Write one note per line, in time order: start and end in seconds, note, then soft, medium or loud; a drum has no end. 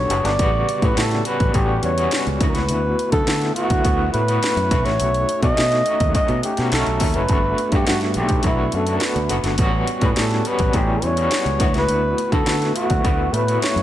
0.00 0.10 G3 medium
0.00 0.11 B3 medium
0.00 0.11 D4 medium
0.00 0.11 F#4 medium
0.00 0.42 A4 medium
0.00 0.27 C#5 loud
0.10 0.22 F#1 medium
0.10 0.33 G3 medium
0.10 0.34 B3 medium
0.10 0.34 D4 medium
0.10 0.34 F#4 medium
0.10 closed hi-hat loud
0.24 0.37 G1 medium
0.24 0.87 D5 loud
0.24 snare soft
0.24 closed hi-hat medium
0.39 0.63 A1 loud
0.39 0.74 C#3 medium
0.39 0.74 G3 medium
0.39 0.74 B3 medium
0.39 0.75 F#4 medium
0.39 kick loud
0.39 closed hi-hat medium
0.69 closed hi-hat medium
0.82 0.94 A2 medium
0.82 1.17 G3 medium
0.82 1.17 B3 medium
0.82 1.18 C#4 medium
0.82 1.18 F#4 medium
0.82 1.00 B4 medium
0.82 kick loud
0.82 closed hi-hat medium
0.97 1.21 A2 loud
0.97 1.26 A4 loud
0.97 snare loud
0.97 closed hi-hat loud
1.11 snare soft
1.11 closed hi-hat soft
1.25 1.49 G3 medium
1.25 1.49 B3 medium
1.25 1.49 C#4 medium
1.25 1.49 F#4 medium
1.25 1.57 B4 loud
1.25 closed hi-hat medium
1.40 1.52 A1 medium
1.40 kick medium
1.40 closed hi-hat medium
1.54 1.78 A1 loud
1.54 1.89 G3 medium
1.54 1.89 B3 medium
1.54 1.89 C#4 medium
1.54 1.89 F#4 medium
1.54 1.84 G4 medium
1.54 kick loud
1.54 closed hi-hat medium
1.83 2.07 E2 medium
1.83 2.26 C#5 loud
1.83 closed hi-hat medium
1.97 2.32 G3 medium
1.97 2.32 B3 medium
1.97 2.32 C#4 medium
1.97 2.32 F#4 medium
1.97 closed hi-hat soft
2.11 snare loud
2.11 closed hi-hat medium
2.27 2.39 C#2 medium
2.27 closed hi-hat soft
2.41 2.53 D2 loud
2.41 2.99 A3 medium
2.41 2.99 B3 medium
2.41 2.99 E4 medium
2.41 3.00 F#4 medium
2.41 kick loud
2.41 closed hi-hat medium
2.49 2.56 A#4 medium
2.55 2.67 C#2 medium
2.55 3.11 B4 loud
2.55 snare soft
2.55 closed hi-hat medium
2.69 2.93 D2 loud
2.69 closed hi-hat medium
2.99 closed hi-hat medium
3.12 3.24 D3 loud
3.12 3.47 A3 medium
3.12 3.47 B3 medium
3.12 3.48 E4 medium
3.12 3.53 A4 loud
3.12 3.48 A4 medium
3.12 kick loud
3.12 closed hi-hat medium
3.27 3.51 D3 medium
3.27 snare loud
3.27 closed hi-hat medium
3.42 snare soft
3.42 closed hi-hat soft
3.55 3.79 A3 medium
3.55 3.79 B3 medium
3.55 3.80 E4 medium
3.55 4.09 F#4 loud
3.55 3.80 F#4 medium
3.55 closed hi-hat medium
3.70 3.82 D2 medium
3.70 kick loud
3.70 closed hi-hat medium
3.85 4.09 D2 medium
3.85 4.19 A3 medium
3.85 4.19 B3 medium
3.85 4.20 E4 medium
3.85 4.20 F#4 medium
3.85 kick loud
3.85 closed hi-hat medium
4.13 4.38 A2 loud
4.13 4.87 B4 loud
4.13 closed hi-hat medium
4.28 4.62 A3 medium
4.28 4.62 B3 medium
4.28 4.63 E4 medium
4.28 4.63 F#4 medium
4.28 closed hi-hat medium
4.43 snare loud
4.43 closed hi-hat loud
4.57 4.68 F#2 medium
4.57 closed hi-hat soft
4.71 4.83 B1 loud
4.71 5.29 A3 medium
4.71 5.29 C#4 medium
4.71 5.29 D#4 medium
4.71 5.29 F#4 medium
4.71 kick loud
4.71 closed hi-hat medium
4.85 4.98 A1 medium
4.85 5.43 C#5 loud
4.85 snare soft
4.85 closed hi-hat medium
5.00 5.24 B1 loud
5.00 closed hi-hat medium
5.14 closed hi-hat soft
5.29 closed hi-hat medium
5.42 5.55 B2 medium
5.42 5.77 A3 medium
5.42 5.77 C#4 medium
5.42 5.77 D#4 medium
5.42 5.77 F#4 medium
5.42 6.11 D#5 loud
5.42 kick loud
5.42 closed hi-hat medium
5.57 5.81 B2 medium
5.57 snare loud
5.57 closed hi-hat loud
5.72 snare soft
5.72 closed hi-hat soft
5.86 6.09 A3 medium
5.86 6.09 C#4 medium
5.86 6.09 D#4 medium
5.86 6.10 F#4 medium
5.86 closed hi-hat medium
6.00 6.12 D#2 medium
6.00 kick medium
6.00 closed hi-hat medium
6.15 6.49 A3 medium
6.15 6.49 C#4 medium
6.15 6.49 D#4 medium
6.15 6.50 F#4 medium
6.15 6.42 D#5 loud
6.15 kick loud
6.15 closed hi-hat medium
6.28 6.41 B2 loud
6.28 closed hi-hat soft
6.43 6.71 G4 medium
6.43 closed hi-hat medium
6.57 6.70 B2 medium
6.57 6.73 A3 medium
6.57 6.73 C#4 medium
6.57 6.73 D#4 medium
6.57 6.74 F#4 medium
6.57 snare soft
6.57 closed hi-hat medium
6.72 6.84 B1 loud
6.72 6.96 A3 medium
6.72 6.97 C#4 medium
6.72 6.97 D#4 medium
6.72 6.97 F#4 medium
6.72 7.17 A4 medium
6.72 snare loud
6.72 closed hi-hat medium
6.86 6.99 B1 medium
6.86 closed hi-hat soft
7.00 7.13 D#2 medium
7.00 7.25 A3 medium
7.00 7.25 C#4 medium
7.00 7.25 D#4 medium
7.00 7.25 A4 medium
7.00 kick medium
7.00 open hi-hat medium
7.14 7.27 F#1 medium
7.14 7.73 B4 loud
7.14 closed hi-hat medium
7.29 7.53 G1 loud
7.29 7.64 A3 medium
7.29 7.65 B3 medium
7.29 7.65 D4 medium
7.29 7.65 F#4 medium
7.29 kick loud
7.29 closed hi-hat medium
7.58 closed hi-hat medium
7.72 7.84 G2 medium
7.72 8.07 A3 medium
7.72 8.08 B3 medium
7.72 8.08 D4 medium
7.72 8.08 F#4 medium
7.72 7.87 G4 medium
7.72 kick medium
7.72 closed hi-hat medium
7.87 8.18 G2 loud
7.87 8.00 F#4 medium
7.87 snare loud
7.87 closed hi-hat loud
8.01 snare soft
8.01 closed hi-hat soft
8.14 8.40 B1 loud
8.14 8.39 A3 medium
8.14 8.39 B3 medium
8.14 8.39 D4 medium
8.14 8.39 F#4 medium
8.14 8.43 G4 medium
8.14 closed hi-hat medium
8.29 kick medium
8.29 closed hi-hat medium
8.43 8.68 B1 loud
8.43 8.79 A3 medium
8.43 8.80 B3 medium
8.43 8.79 D4 medium
8.43 8.77 E4 medium
8.43 8.80 F#4 medium
8.43 kick loud
8.43 closed hi-hat medium
8.72 8.97 F#2 medium
8.72 8.98 A4 medium
8.72 closed hi-hat medium
8.87 9.22 A3 medium
8.87 9.22 B3 medium
8.87 9.22 D4 medium
8.87 9.22 F#4 medium
8.87 closed hi-hat medium
8.97 9.06 A#4 medium
8.97 closed hi-hat medium
9.01 9.47 B4 medium
9.01 snare medium
9.16 9.28 D2 medium
9.16 closed hi-hat soft
9.29 9.43 F#1 medium
9.29 9.53 A3 medium
9.29 9.54 B3 medium
9.29 9.54 D4 medium
9.29 9.54 F#4 medium
9.29 closed hi-hat medium
9.44 9.56 G1 loud
9.44 snare soft
9.44 closed hi-hat medium
9.58 9.83 A1 loud
9.58 9.94 G3 loud
9.58 9.94 B3 medium
9.58 9.94 C#4 medium
9.58 9.94 F#4 loud
9.58 kick loud
9.58 closed hi-hat medium
9.87 closed hi-hat medium
10.01 10.14 A2 medium
10.01 10.37 G3 medium
10.01 10.37 B3 medium
10.01 10.37 C#4 medium
10.01 10.38 F#4 medium
10.01 10.11 B4 medium
10.01 kick loud
10.01 closed hi-hat medium
10.16 10.41 A2 loud
10.16 10.49 A4 medium
10.16 snare loud
10.16 closed hi-hat loud
10.31 snare soft
10.31 closed hi-hat soft
10.45 10.69 G3 medium
10.45 10.69 B3 medium
10.45 10.69 C#4 medium
10.45 10.70 F#4 medium
10.45 10.78 B4 loud
10.45 closed hi-hat medium
10.59 10.72 A1 loud
10.59 kick loud
10.59 closed hi-hat medium
10.73 10.98 A1 loud
10.73 11.09 G3 medium
10.73 11.09 B3 medium
10.73 11.09 C#4 medium
10.73 11.10 E4 medium
10.73 11.06 G4 medium
10.73 kick medium
10.73 closed hi-hat medium
11.02 11.27 E2 medium
11.02 11.76 C#5 loud
11.02 closed hi-hat medium
11.16 11.52 G3 medium
11.16 11.52 B3 medium
11.16 11.52 C#4 medium
11.16 11.52 F#4 medium
11.16 closed hi-hat soft
11.31 snare loud
11.31 closed hi-hat medium
11.46 11.58 C#2 medium
11.46 closed hi-hat soft
11.60 11.73 D2 loud
11.60 12.18 A3 medium
11.60 12.18 B3 medium
11.60 12.19 E4 medium
11.60 12.19 F#4 loud
11.60 kick loud
11.60 closed hi-hat medium
11.73 11.86 C#2 medium
11.73 12.30 B4 loud
11.73 snare soft
11.73 closed hi-hat medium
11.89 12.13 D2 loud
11.89 closed hi-hat medium
12.18 closed hi-hat medium
12.32 12.45 D3 loud
12.32 12.67 A3 medium
12.32 12.67 B3 medium
12.32 12.68 E4 medium
12.32 12.68 F#4 medium
12.32 12.73 A4 loud
12.32 kick loud
12.32 closed hi-hat medium
12.46 12.71 D3 loud
12.46 snare loud
12.46 closed hi-hat loud
12.62 snare soft
12.62 closed hi-hat soft
12.75 12.98 A3 medium
12.75 12.99 B3 medium
12.75 12.99 E4 medium
12.75 12.99 F#4 medium
12.75 13.35 F#4 loud
12.75 closed hi-hat medium
12.90 13.02 D2 medium
12.90 kick medium
12.90 closed hi-hat soft
13.04 13.29 D2 loud
13.04 13.39 A3 medium
13.04 13.39 B3 medium
13.04 13.39 E4 medium
13.04 13.40 F#4 medium
13.04 kick loud
13.04 closed hi-hat medium
13.33 13.57 A2 medium
13.33 13.61 B4 loud
13.33 closed hi-hat medium
13.48 13.83 A3 medium
13.48 13.83 B3 medium
13.48 13.83 E4 medium
13.48 13.83 F#4 medium
13.48 closed hi-hat medium
13.61 13.83 C#5 loud
13.61 snare loud
13.61 closed hi-hat medium
13.76 13.83 F#2 medium
13.76 closed hi-hat soft